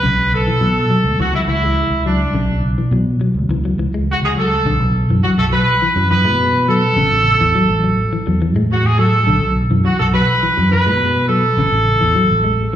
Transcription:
Already playing: B4
0.03 B1 C#3
0.34 A4
0.47 E3
0.61 B2 F#3
0.90 F#3, muted fingered electric bass stroke
1.04 D2
1.19 C#2 E3 F#4
1.34 F#3 E4
1.47 C#2 E3 E4
1.63 G#3
1.90 C#2
2.06 F#3 D4
2.33 B1 C#3
2.78 E3
2.91 B2 F#3
3.21 F#3, muted fingered electric bass stroke
3.34 D2
3.49 C#2 E3
3.65 F#3
3.78 C#2 E3
3.94 G#3
4.11 F#4
4.22 C#2 G#4
4.37 F#3 A4
4.65 B1 D3
4.80 B1
5.09 F#2 E3
5.23 F#3 F#4, muted fingered electric bass stroke
5.38 B1 A4
5.52 F#3 B4
5.82 E3
5.96 F#2 F#3
6.10 E3 B4
6.24 B2 G#3
6.68 F#3 A4
6.96 A1 C#3
7.12 A1
7.40 E2 E3
7.54 F#3, muted fingered electric bass stroke
7.69 A1
7.84 F#3
8.13 E3
8.27 E2 F#3
8.42 E3
8.56 A2 G#3
8.71 F#4
8.85 G#4
8.98 F#3 A4
9.27 B1 D3
9.42 B1
9.71 F#2 E3
9.85 F#3 F#4, muted fingered electric bass stroke
9.99 B1 A4
10.13 F#3 B4
10.43 E3
10.57 F#2 F#3
10.71 E3 B4
10.86 B2 G#3
11.28 F#3 A4
11.57 A1 C#3
11.72 A1
12.01 E2 E3
12.15 F#3, muted fingered electric bass stroke
12.30 A1
12.44 G#3

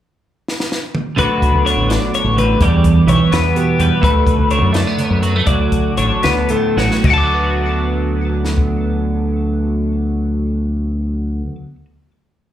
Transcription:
0.48 snare
0.60 snare
0.72 snare
0.95 mid tom
1.16 D2 D3 F#3 B3 F#4 B4, kick, closed hi-hat
1.42 kick, closed hi-hat
1.54 D2
1.65 D3 C#5, closed hi-hat
1.77 A1
1.89 D5, snare, closed hi-hat
2.14 C#5, closed hi-hat
2.24 A1
2.37 D2 B4, closed hi-hat
2.60 E2 G3 D5, kick, closed hi-hat
2.84 kick, closed hi-hat
3.07 B1 E3 C#5, closed hi-hat
3.32 E2 B3 B4, snare, closed hi-hat
3.55 B2 G4, closed hi-hat
3.79 E2 G3 B4, closed hi-hat
4.01 D2 A3 B4, kick, closed hi-hat
4.27 kick, closed hi-hat
4.39 D2
4.51 D3 C#5, closed hi-hat
4.62 F#2
4.73 A3 D5, snare, closed hi-hat
4.87 B3
4.98 D2 C#5, closed hi-hat
5.10 F#2
5.22 F#3 B4, closed hi-hat
5.36 A3
5.47 D2 F#3 D5, kick, closed hi-hat
5.72 kick, closed hi-hat
5.97 A1 D3 C#5, closed hi-hat
6.23 D2 B3 B4, snare, closed hi-hat
6.49 A2 A4, closed hi-hat
6.77 A1 F#3 C#5, snare
6.91 snare
7.04 D2 D5, kick, crash
7.10 D3 F#5 A5
7.18 D6
7.23 F#3
7.34 B3
7.44 F#4
8.45 snare
8.58 kick

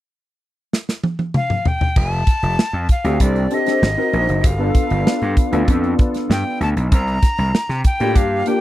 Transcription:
0.73 snare
0.89 snare
1.03 high tom
1.19 high tom
1.34 F5, mid tom
1.50 mid tom
1.65 G5, floor tom
1.81 floor tom
1.96 F1 A5, kick, crash
2.12 closed hi-hat
2.27 kick, closed hi-hat
2.43 F1, closed hi-hat
2.58 muted slap bass stroke, snare
2.73 F2
2.89 F5, kick, closed hi-hat
3.04 D2 C4 D4 G4 A4, closed hi-hat
3.20 C2 D5, kick, closed hi-hat
3.36 closed hi-hat
3.51 C4 D4 G4 A4 D#5, closed hi-hat
3.66 C4 D4 G4 A4, snare, closed hi-hat
3.82 G#1, snare
3.97 C4 D#4 F#4 A#4
4.12 A#1 C4 D#4 F#4 A#4, closed hi-hat
4.29 F#1, closed hi-hat
4.44 G1 F5, kick, closed hi-hat
4.58 B3 D4 F4 A4
4.75 kick, closed hi-hat
4.90 G1, closed hi-hat
5.05 B3 D4 F4 A4, snare
5.22 G2, closed hi-hat
5.37 kick, closed hi-hat
5.52 D2 B3 D4 F4 A4, closed hi-hat
5.68 F2 B3 D4 F4 A4, kick, closed hi-hat
5.84 closed hi-hat
5.99 kick, closed hi-hat
6.14 snare, closed hi-hat
6.30 G2 G5, snare
6.60 D2 A5, closed hi-hat
6.76 B1, closed hi-hat
6.92 C2 A#5, kick, closed hi-hat
7.08 closed hi-hat
7.22 kick, snare, closed hi-hat
7.38 C2, closed hi-hat
7.55 snare
7.69 C3, snare, closed hi-hat
7.84 G5, kick, closed hi-hat
8.00 A2 A#3 D4 F4 G4, closed hi-hat
8.15 G2 F5, kick, closed hi-hat
8.46 A#3 D4 F4 G4 G5, closed hi-hat

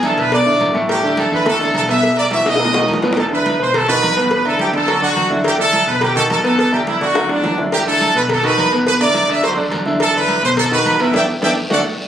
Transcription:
Already playing: E2
0.03 D3 D4 E4 A4 A5, cowbell, high conga, low agogo, short guiro
0.17 B1 B4 B5, cowbell, high conga, short guiro
0.31 B2 B3 B4 D5 D6, cowbell, high conga, low agogo, long guiro
0.45 B1 D3 D4 E4, high conga
0.60 A1, cowbell, high conga, low timbale, low agogo, short guiro
0.74 A2 A3 A4, high conga, short guiro
0.89 G4 G5, cowbell, high conga, low agogo, long guiro
1.03 D3 D4 E4 G4 G5, high conga
1.17 A4 A5, cowbell, high conga, low agogo, short guiro
1.31 E2 D3 D4 E4 B4 B5, short guiro
1.45 A2 A3 A4 A5, cowbell, high conga, low conga, low agogo, long guiro
1.60 D3 D4 E4 A4 A5, cowbell, high conga
1.74 B1 A4 A5, cowbell, high conga, low timbale, low agogo, short guiro
1.88 B2 B3 B4 E5 E6, cowbell, high conga, low agogo, short guiro
2.02 B2 B3 B4, cowbell, long guiro
2.17 D5 D6, high conga, low agogo
2.31 E3 E4 F#4 E5 E6, cowbell, high conga, high timbale, low agogo, short guiro
2.46 B1 D#5 D#6, cowbell, high bongo, high conga, short guiro
2.55 B2, high bongo, low agogo
2.60 B3 B4, cowbell, high conga, long guiro
2.65 low bongo
2.73 D#3 D#4 F#4, high bongo, high conga, low timbale
2.84 low bongo
2.88 E2, cowbell, high conga, low agogo, short guiro
2.93 low bongo
3.02 B2 B3 B4, low bongo, high conga, low timbale, short guiro
3.13 low bongo, low agogo
3.17 A4 A5, cowbell, high conga
3.31 D3 D4 E4 B4 B5, high conga
3.45 cowbell, high conga, low agogo
3.59 B1 B2 B3 B4 C5 C6
3.74 A4 A5, cowbell, high conga, low conga, low agogo
3.88 D#3 D#4 F#4 B4 B5, cowbell, high conga, low conga
4.02 E2, cowbell, high conga, low timbale, low agogo
4.16 B2 B3 B4 B5, cowbell, high conga, low agogo
4.31 B2 B3 B4 B5, cowbell, high conga
4.45 D3 D4 E4 A4 A5, high conga, low agogo
4.59 G4 G5, cowbell, high conga, low agogo
4.73 D2 D3 D4 A4 D5 A5, cowbell, high conga
4.87 F#3 F#4 A4, cowbell, high conga, low agogo
5.02 D3 D4 F#4 D5 F#5, high conga
5.16 E2, cowbell, high conga, low agogo
5.30 D3 D4 E4, high conga
5.44 G4 G5, cowbell, high conga, low agogo
5.58 D3 D4 E4 A4 A5, high conga
5.73 cowbell, high conga, low agogo
5.87 B1 B2 B3 B4 B5
6.01 G4 G5, cowbell, high conga, low conga, low agogo
6.16 D#3 D#4 F#4 A4 A5, cowbell, high conga, low conga
6.30 E2 A4 A5, cowbell, high conga, low timbale, low agogo
6.44 B2 B3 A4 B4 A5, cowbell, high conga, low agogo
6.58 B2 B3 A4 B4 A5, cowbell
6.72 D3 D4 E4 G4 G5, high conga, low agogo
6.87 E4 E5, cowbell, high conga, low agogo
7.01 D2 D3 D4 F#4 D5 F#5, cowbell, high conga
7.14 F#3 F#4 A4, cowbell, high bongo, high conga, low agogo
7.29 D3 D4 D5, low bongo, high conga
7.43 E2, cowbell, low bongo, high conga, low timbale, low agogo
7.57 D3 D4 E4, low bongo, high conga
7.72 G4 G5, cowbell, high conga, low agogo, long guiro
7.86 D3 D4 E4 A4 A5, high conga
8.01 cowbell, high conga, low agogo, short guiro
8.15 B1 B2 B3 B4 B5, short guiro
8.29 A4 A5, cowbell, high conga, low conga, low agogo, long guiro
8.43 D#3 D#4 F#4 B4 B5, cowbell, high conga, low conga
8.57 E2, cowbell, high conga, low timbale, low agogo, short guiro
8.72 B2 B3 B4, cowbell, low agogo, short guiro
8.86 B2 B3 B4 B5, cowbell, high conga, long guiro
9.00 D3 D4 E4 D5 D6, high conga, low agogo
9.15 cowbell, high conga, low agogo, short guiro
9.28 D2 D3 D4 D5 E5 E6, cowbell, high conga, short guiro
9.43 F#3 F#4 A4 C5 C6, cowbell, low agogo, long guiro
9.57 D2 D3 D4 D5, high conga
9.71 E2, cowbell, high conga, low timbale, low agogo, short guiro
9.86 D3 D4 E4, high conga, short guiro
10.00 A4 A5, cowbell, low agogo, long guiro
10.14 D3 D4 E4 B4 B5, high conga
10.28 cowbell, high conga, low agogo, short guiro
10.42 B1 B2 B3 B4 C5 C6, short guiro
10.57 A4 A5, cowbell, high conga, low conga, low agogo, long guiro
10.71 D#3 D#4 F#4 B4 B5, cowbell, high conga, low conga
10.85 E2, cowbell, high conga, low timbale, low agogo, short guiro
10.99 B2 B3 E4 B4 E5, cowbell, low agogo, short guiro
11.13 E2 B3 D4 E4 D5 E5 G5, cowbell, high conga, high timbale, long guiro
11.42 E2 B3 D4 E4 D5 E5 G5, cowbell, high conga, high timbale, long guiro
11.70 D2 A3 D4 F#4 A4 D5 F#5, cowbell, high conga, high timbale, long guiro

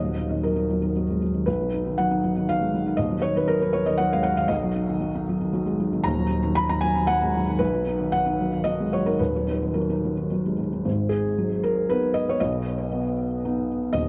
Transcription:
Already playing: D#1 D#2 D#5
0.04 F#3
0.17 D#4
0.30 D#3
0.43 F#3 A#4
0.56 D#4
0.71 F#3
0.82 D#3
0.96 F#3
1.10 G#3
1.22 F#3
1.34 D#3
1.46 B1 B4
1.61 F#3
1.74 D#4
1.87 D#3
1.98 F#3 F#5
2.11 D#4
2.24 F#3
2.37 D#3
2.49 F#3 F5
2.61 G#3
2.74 F#3
2.86 D#3
2.97 D#1 D#2 D#5
3.11 F#3
3.22 D#4 C#5
3.37 D#3 B4
3.48 F#3 A#4
3.62 D#4 B4
3.73 F#3 C#5
3.86 D#3 D#5
3.98 F#3 F#5
4.13 G#3 F5
4.23 F#3 F#5
4.37 D#3 F5
4.48 B1 D#5
4.64 F#3
4.76 D#4
4.89 D#3
5.00 F#3
5.15 D#4
5.29 F#3
5.41 D#3
5.53 F#3
5.66 G#3
5.80 F#3
5.93 D#3
6.04 D#1 D#2 A#5
6.19 F#3
6.31 D#4
6.44 D#3
6.55 F#3 B5
6.69 D#4 A#5
6.81 F#3 G#5
6.96 D#3
7.07 F#3 F#5
7.22 G#3
7.36 F#3
7.48 D#3
7.59 B1 B4
7.74 F#3
7.87 D#4
7.99 D#3
8.12 F#3 F#5
8.26 D#4
8.41 F#3
8.53 D#3
8.64 F#3 D#5
8.80 G#3
8.93 F#3 C#5
9.06 D#3 A#4
9.19 D#1 D#2 B4
9.36 F#3
9.48 D#4
9.62 D#3
9.74 F#3 A#4
9.89 D#4
10.05 F#3
10.17 D#3
10.31 F#3
10.46 G#3
10.58 F#3
10.73 D#3
10.85 G#1 G#2
11.09 G#4
11.38 F#3
11.63 A#4
11.89 B3 D#4 B4
12.14 D#5
12.29 C#5
12.40 B1 B2 D#5
12.91 B3
13.45 B3 D#4
13.93 D#1 D#2 D#5

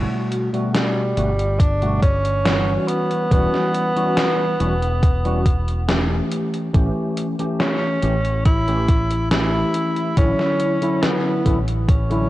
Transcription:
Already playing: B2 G3 A3 F#4
0.32 closed hi-hat
0.53 B2 G3 A3 F#4, closed hi-hat
0.74 G3, snare, closed hi-hat
1.17 G1 B2 G3 A3 F#4, closed hi-hat
1.39 closed hi-hat
1.60 D4, kick, closed hi-hat
1.81 B2 G3 A3 F#4, closed hi-hat
2.02 C#4, kick, closed hi-hat
2.25 closed hi-hat
2.45 E3 G3 C#4 F#4, snare, closed hi-hat
2.88 B3, closed hi-hat
3.11 closed hi-hat
3.31 E1 E3 G3 C#4 F#4, kick, closed hi-hat
3.54 snare
3.74 closed hi-hat
3.96 E3 G3 C#4 F#4, closed hi-hat
4.17 snare, closed hi-hat
4.59 E1 E3 G3 C#4 F#4, closed hi-hat
4.82 closed hi-hat
5.03 kick, closed hi-hat
5.25 E3 G3 C#4 F#4, closed hi-hat
5.46 kick, closed hi-hat
5.68 closed hi-hat
5.88 E3 A3 C#4 G4, snare, closed hi-hat
6.31 closed hi-hat
6.54 closed hi-hat
6.73 A1 E3 A3 C#4 G4, kick, closed hi-hat
7.17 closed hi-hat
7.39 E3 A3 C#4 G4, closed hi-hat
7.60 C#4, snare, closed hi-hat
8.02 A1 E3 A3 C#4 G4, closed hi-hat
8.25 closed hi-hat
8.45 E4, kick, closed hi-hat
8.67 E3 A3 C#4 G4, closed hi-hat
8.88 kick, closed hi-hat
9.11 closed hi-hat
9.31 E3 A3 C#4 E4 G4, snare, closed hi-hat
9.74 closed hi-hat
9.96 closed hi-hat
10.17 A1 D3 F#3 C#4 E4, kick, closed hi-hat
10.39 snare
10.60 closed hi-hat
10.81 D3 F#3 C#4 E4, closed hi-hat
11.03 B3, snare, closed hi-hat
11.45 A1 D3 F#3 C#4 E4, kick, closed hi-hat
11.68 closed hi-hat
11.88 C#4, kick, closed hi-hat
12.10 D3 F#3 C#4 E4, closed hi-hat

